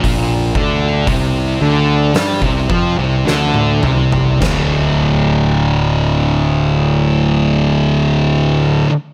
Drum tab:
CC |----------------|x---------------|
HH |o---o---o-------|----------------|
SD |--------o---o---|o---------------|
T1 |-------------o--|----------------|
T2 |--------------o-|----------------|
FT |---------------o|----------------|
BD |o-o-o----oo-----|o---------------|